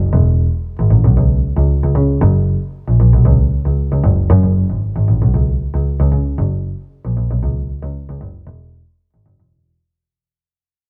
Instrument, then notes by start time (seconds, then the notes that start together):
double bass
0.13 E1
0.79 G#1
0.90 A1
1.05 B1
1.17 C#2
1.57 C#2
1.83 C#2
1.95 C#3
2.22 F#1
2.88 A#1
3.00 A#1
3.13 B1
3.25 C#2
3.66 C#2
3.92 C#2
4.04 F#1
4.30 F#2
4.43 F#1
4.70 G#1
4.96 G#1
5.08 A1
5.22 B1
5.34 C#2
5.74 C#2
6.00 C#2
6.12 C#3
6.38 F#1
7.05 A#1
7.17 A#1
7.31 B1
7.43 C#2
7.83 C#2
8.09 C#2
8.21 F#1
8.47 E1
9.14 G#1
9.26 F#1
9.40 E1